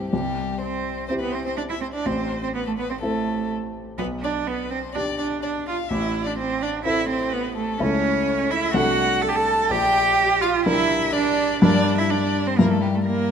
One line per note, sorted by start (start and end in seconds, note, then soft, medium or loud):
0.00 0.13 C2 soft
0.00 0.14 G2 soft
0.00 0.06 G3 soft
0.00 0.15 C4 soft
0.00 0.14 E4 soft
0.00 0.10 G4 soft
0.00 0.14 G4 soft
0.11 2.03 C2 soft
0.11 0.60 G3 medium
0.11 0.60 G4 medium
0.59 1.08 C4 medium
0.59 1.08 C5 soft
1.08 1.14 C4 medium
1.08 2.03 C4 soft
1.08 2.03 E4 soft
1.08 2.03 G4 soft
1.08 1.13 C5 medium
1.20 1.36 B3 medium
1.20 1.34 B4 soft
1.32 1.45 C4 medium
1.32 1.44 C5 soft
1.45 1.51 C4 medium
1.45 1.57 C5 soft
1.57 1.62 D4 medium
1.57 1.63 D5 medium
1.70 1.75 E4 soft
1.70 1.82 E5 soft
1.81 1.86 C4 soft
1.81 1.87 C5 soft
1.94 2.07 D4 medium
1.94 2.08 D5 soft
2.06 3.94 A1 soft
2.06 2.42 C4 medium
2.06 2.42 C5 medium
2.42 2.54 C4 medium
2.42 2.48 C5 soft
2.54 2.59 B3 medium
2.54 2.66 B4 soft
2.67 2.78 A3 soft
2.67 2.72 A4 soft
2.78 2.83 B3 medium
2.78 2.91 B4 medium
2.89 2.95 C4 medium
2.89 3.01 C5 soft
3.02 3.50 A3 medium
3.02 3.95 C4 soft
3.02 3.95 E4 soft
3.02 3.49 A4 soft
3.02 3.95 A4 soft
3.98 5.87 B1 soft
3.98 4.06 B3 medium
3.98 4.06 B4 medium
4.22 4.49 D4 medium
4.22 4.32 D5 medium
4.47 4.70 B3 medium
4.47 4.72 B4 soft
4.70 4.78 C4 medium
4.70 4.95 C5 medium
4.95 5.03 D4 medium
4.95 5.88 D4 soft
4.95 5.88 G4 soft
4.95 5.18 D5 medium
5.18 5.43 D4 medium
5.18 5.26 D5 medium
5.43 5.67 D4 medium
5.43 5.51 D5 soft
5.67 5.76 F4 medium
5.67 5.91 F5 soft
5.89 7.76 A1 medium
5.89 6.28 E4 medium
5.89 6.24 E5 medium
6.24 6.38 D4 medium
6.24 6.37 D5 medium
6.38 6.64 C4 medium
6.38 6.61 C5 soft
6.62 6.85 D4 medium
6.62 6.70 D5 medium
6.85 7.76 C4 soft
6.85 7.76 E4 soft
6.85 7.09 E4 medium
6.85 7.76 A4 soft
6.85 7.09 E5 medium
7.09 7.35 C4 medium
7.09 7.33 C5 medium
7.32 7.56 B3 medium
7.32 7.56 B4 medium
7.56 7.80 A3 medium
7.56 7.81 A4 medium
7.80 8.73 C#2 medium
7.80 8.71 A3 soft
7.80 8.52 C#4 medium
7.80 8.71 E4 soft
7.80 8.72 A4 soft
7.80 8.52 C#5 medium
8.51 8.74 E4 medium
8.51 8.75 E5 medium
8.74 9.67 C2 soft
8.74 9.66 A3 soft
8.74 9.67 D4 soft
8.74 9.23 F#4 medium
8.74 9.67 A4 soft
8.74 9.23 F#5 medium
9.22 9.30 A4 medium
9.22 9.70 A5 medium
9.29 9.37 G4 medium
9.36 9.73 A4 medium
9.70 11.59 A#1 medium
9.70 10.43 G4 medium
9.70 10.41 G5 medium
10.41 10.66 F4 medium
10.41 10.50 F5 medium
10.66 11.59 G3 soft
10.66 11.59 D4 soft
10.66 11.13 E4 medium
10.66 11.59 A#4 soft
10.66 11.15 E5 medium
11.13 11.62 D4 medium
11.13 11.61 D5 medium
11.62 12.56 G2 medium
11.62 12.55 G3 soft
11.62 12.00 D4 medium
11.62 12.55 D4 soft
11.62 12.55 A#4 soft
11.62 11.97 D5 medium
11.98 12.12 E4 medium
11.98 12.12 E5 medium
12.10 12.48 D4 medium
12.10 12.49 D5 medium
12.46 12.60 C4 medium
12.46 12.58 C5 medium
12.58 13.31 G2 medium
12.58 13.31 G3 soft
12.58 12.73 A#3 medium
12.58 13.31 E4 soft
12.58 12.69 A#4 medium
12.58 13.31 A#4 soft
12.70 12.82 A3 medium
12.70 12.83 A4 medium
12.82 12.87 G3 medium
12.82 12.97 G4 medium
12.95 13.00 A3 medium
12.95 13.05 A4 soft
13.05 13.31 A#3 medium
13.05 13.31 A#4 medium